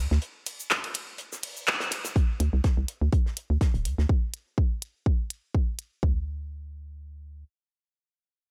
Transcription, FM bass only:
0.11 D2
2.40 D2
2.53 C2
2.77 C2
3.02 D2
3.50 D2
3.74 D1
3.85 D2
3.98 D2
6.03 D2

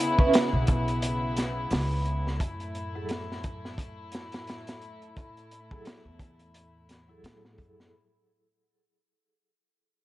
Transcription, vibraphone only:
0.19 C#4 B4 E5
2.95 F#3 E4 G#4 A4
5.71 F#3 E4 G#4 A4
7.08 F#3 E4 G#4 A4

